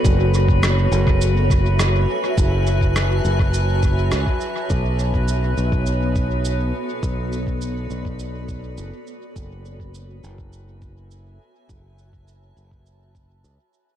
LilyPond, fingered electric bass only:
\new Staff \with { instrumentName = "Fingered electric bass" } { \clef bass \time 4/4 \key fis \minor \tempo 4 = 103 fis,,4. fis,,2 r8 | fis,,4. fis,,4. cis,8 r8 | b,,4. b,,2 r8 | b,,4. b,,4. fis,,8 r8 |
fis,,4. fis,,2 r8 | fis,,4. fis,,4. cis,8 r8 | }